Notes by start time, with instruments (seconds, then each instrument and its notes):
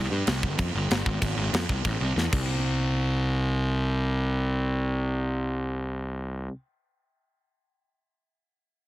0.11 picked electric bass G2
0.27 picked electric bass C2, snare, crash
0.43 picked electric bass G1, kick
0.58 picked electric bass F2, kick, crash
0.75 picked electric bass G1
0.90 picked electric bass G1, snare, crash
1.06 picked electric bass G#1, kick
1.22 picked electric bass G#1, kick, crash
1.37 picked electric bass G#1
1.53 picked electric bass F2, snare, crash
1.69 picked electric bass C2, kick
1.85 picked electric bass A1, kick, crash
2.01 picked electric bass C2
2.16 picked electric bass E2, snare
2.33 picked electric bass C2, kick, crash